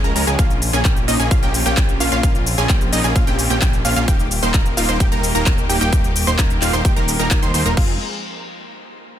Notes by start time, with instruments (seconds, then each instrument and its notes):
Already playing: string section C#3 F3 G#3 G4
0.04 analog synth bass C#2, supersaw synth G#3 C#4 A#4, synth pluck A#5, closed hi-hat, shaker
0.16 analog synth bass C#2, supersaw synth G#3 C#4 A#4, synth pluck A#5, open hi-hat, shaker
0.27 analog synth bass C#2, supersaw synth G#3 C#4 G#4, synth pluck G#5, closed hi-hat, shaker
0.39 analog synth bass A#1, supersaw synth A#3 C#4 F4, string section A#3 F4, synth pluck F5, kick, closed hi-hat, shaker
0.50 closed hi-hat, shaker
0.62 open hi-hat, shaker
0.73 analog synth bass A#1, supersaw synth A#3 C#4 G#4, synth pluck G#5, closed hi-hat, shaker
0.85 analog synth bass A#1, supersaw synth A#3 C#4 G4, synth pluck G5, kick, clap, closed hi-hat, shaker
0.97 closed hi-hat, shaker
1.08 analog synth bass A#1, supersaw synth A#3 C#4 D#4, synth pluck D#5, open hi-hat, shaker
1.20 analog synth bass A#1, supersaw synth A#3 C#4 G#4, synth pluck G#5, closed hi-hat, shaker
1.31 analog synth bass A#1, supersaw synth A#3 C#4 F4, synth pluck F5, kick, closed hi-hat, shaker
1.43 analog synth bass A#1, supersaw synth A#3 C#4 G4, synth pluck G5, closed hi-hat, shaker
1.54 open hi-hat, shaker
1.66 analog synth bass A#1, supersaw synth A#3 C#4 G4, synth pluck G5, closed hi-hat, shaker
1.77 analog synth bass A#1, synth pluck G5, kick, clap, closed hi-hat, shaker
1.89 closed hi-hat, shaker
2.00 analog synth bass A#1, supersaw synth A#3 C#4 F4, synth pluck F5, open hi-hat, shaker
2.12 analog synth bass A#1, supersaw synth A#3 C#4 F4, synth pluck F5, shaker
2.23 analog synth bass A#1, supersaw synth A#3, string section C4, synth pluck F5, kick, closed hi-hat, shaker
2.35 closed hi-hat, shaker
2.46 open hi-hat, shaker
2.58 analog synth bass A#1, supersaw synth A#3 C#4 G#4, synth pluck G#5, closed hi-hat, shaker
2.69 analog synth bass A#1, supersaw synth A#3, synth pluck G5, kick, clap, closed hi-hat, shaker
2.81 closed hi-hat, shaker
2.93 analog synth bass A#1, supersaw synth A#3 C#4 D#4, synth pluck D#5, open hi-hat, shaker
3.04 analog synth bass A#1, supersaw synth A#3 C#4 G#4, synth pluck G#5, closed hi-hat, shaker
3.16 analog synth bass A#1, supersaw synth A#3 F4, synth pluck F5, kick, closed hi-hat, shaker
3.27 analog synth bass A#1, supersaw synth A#3 C#4 G4, synth pluck G5, closed hi-hat, shaker
3.39 open hi-hat, shaker
3.50 analog synth bass A#1, supersaw synth A#3 C#4 G4, synth pluck G5, closed hi-hat, shaker
3.62 analog synth bass A#1, supersaw synth A#3 C#4 G4, synth pluck G5, kick, clap, closed hi-hat, shaker
3.73 closed hi-hat, shaker
3.85 analog synth bass A#1, supersaw synth A#3 C#4 F4, synth pluck F5, open hi-hat, shaker
3.96 analog synth bass A#1, supersaw synth A#3 C#4 F4, synth pluck F5, closed hi-hat, shaker
4.08 analog synth bass D#1, string section D#3 G3 A#3 G4, supersaw synth A#3 D#4 G4, synth pluck G5, kick, closed hi-hat, shaker
4.19 closed hi-hat, shaker
4.31 open hi-hat, shaker
4.43 analog synth bass D#1, supersaw synth A#3 D#4 C5, synth pluck C6, closed hi-hat, shaker
4.54 analog synth bass D#1, supersaw synth A#3 D#4 A#4, synth pluck A#5, kick, clap, closed hi-hat, shaker
4.66 closed hi-hat, shaker
4.77 analog synth bass D#1, supersaw synth A#3 D#4 F4, synth pluck F5, open hi-hat, shaker
4.89 analog synth bass D#1, supersaw synth A#3 D#4 C5, synth pluck C6, closed hi-hat, shaker
5.00 analog synth bass D#1, supersaw synth A#3 D#4 G4, synth pluck G5, kick, closed hi-hat, shaker
5.12 analog synth bass D#1, supersaw synth A#3 D#4 A#4, synth pluck A#5, closed hi-hat, shaker
5.23 open hi-hat, shaker
5.35 analog synth bass D#1, supersaw synth A#3 D#4 A#4, synth pluck A#5, closed hi-hat, shaker
5.46 analog synth bass D#1, synth pluck A#5, kick, clap, closed hi-hat, shaker
5.58 closed hi-hat, shaker
5.69 analog synth bass D#1, supersaw synth A#3 D#4 G4, synth pluck G5, open hi-hat, shaker
5.81 analog synth bass D#1, supersaw synth A#3 D#4 G4, synth pluck G5, closed hi-hat, shaker
5.93 analog synth bass D#1, supersaw synth A#3 G4, synth pluck G5, kick, closed hi-hat, shaker
6.04 closed hi-hat, shaker
6.16 open hi-hat, shaker
6.27 analog synth bass D#1, supersaw synth A#3 D#4 C5, synth pluck C6, closed hi-hat, shaker
6.39 analog synth bass D#1, supersaw synth A#3 D#4 A#4, synth pluck A#5, kick, clap, closed hi-hat, shaker
6.50 closed hi-hat, shaker
6.62 analog synth bass D#1, supersaw synth A#3 D#4 F4, synth pluck F5, clap, open hi-hat, shaker
6.73 analog synth bass D#1, supersaw synth A#3 D#4 C5, synth pluck C6, closed hi-hat, shaker
6.85 analog synth bass D#1, supersaw synth A#3 D#4 G4, synth pluck G5, kick, closed hi-hat, shaker
6.96 analog synth bass D#1, supersaw synth A#3 D#4 A#4, synth pluck A#5, closed hi-hat, shaker
7.08 open hi-hat, shaker
7.19 analog synth bass D#1, supersaw synth A#3 D#4 A#4, synth pluck A#5, closed hi-hat, shaker
7.31 analog synth bass D#1, supersaw synth A#3 D#4 A#4, synth pluck A#5, kick, clap, closed hi-hat, shaker
7.43 analog synth bass D#2, supersaw synth A#3 D#4 C5, synth pluck C6, closed hi-hat, shaker
7.54 analog synth bass D#2, supersaw synth A#3 D#4 C5, synth pluck C6, open hi-hat, shaker
7.66 analog synth bass D#1, supersaw synth A#3 D#4 A#4, synth pluck A#5, closed hi-hat, shaker
7.77 analog synth bass F1, string section F3 G#3 C4 G#4, supersaw synth G#3 C4 F4, synth pluck F5, kick, crash